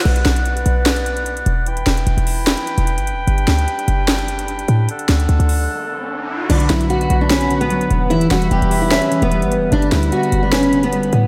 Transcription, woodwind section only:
0.00 1.63 F#5 medium
0.05 1.65 B3 medium
0.05 1.65 B4 medium
0.05 1.65 D5 medium
1.66 3.10 E3 medium
1.66 3.10 E4 medium
1.66 4.85 B4 medium
1.66 4.85 G5 medium
3.27 4.87 G3 medium
3.27 6.46 D4 medium
4.89 6.48 D3 medium
4.89 6.48 A4 medium
4.89 6.48 F#5 medium
6.50 8.09 F#4 medium
6.50 11.27 B4 medium
6.50 8.09 F#5 medium
6.50 8.09 B5 medium
8.11 11.27 G3 medium
8.11 9.55 E5 medium
8.11 9.55 B5 medium
9.72 11.27 B5 loud

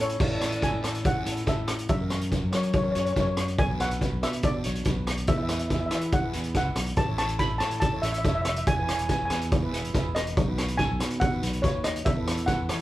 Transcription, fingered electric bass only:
0.00 0.19 A2 medium
0.20 0.69 A2 medium
0.73 0.83 A2 medium
0.84 1.23 A2 medium
1.26 1.45 A2 medium
1.47 1.86 A2 medium
1.89 2.39 F#2 medium
2.43 2.52 F#2 medium
2.53 2.93 F#3 medium
2.96 3.15 F#2 medium
3.16 3.56 F#2 medium
3.59 4.08 B1 medium
4.12 4.22 B1 medium
4.22 4.62 B2 medium
4.66 4.85 B1 medium
4.86 5.26 B1 medium
5.28 5.78 E2 medium
5.80 5.90 E2 medium
5.91 6.31 E3 medium
6.35 6.54 E2 medium
6.55 6.74 C#2 medium
6.75 6.95 B1 medium
6.97 7.47 A1 medium
7.50 7.60 A1 medium
7.61 8.01 A2 medium
8.03 8.23 A1 medium
8.25 8.64 F1 medium
8.68 9.17 E1 medium
9.21 9.30 E1 medium
9.31 9.70 E2 medium
9.73 9.93 E1 medium
9.94 10.34 E1 medium
10.37 10.86 B1 medium
10.90 11.00 B1 medium
11.00 11.40 B2 medium
11.42 11.62 B1 medium
11.64 12.03 D#2 medium
12.06 12.56 E2 medium
12.59 12.69 E2 medium
12.69 12.81 E3 medium

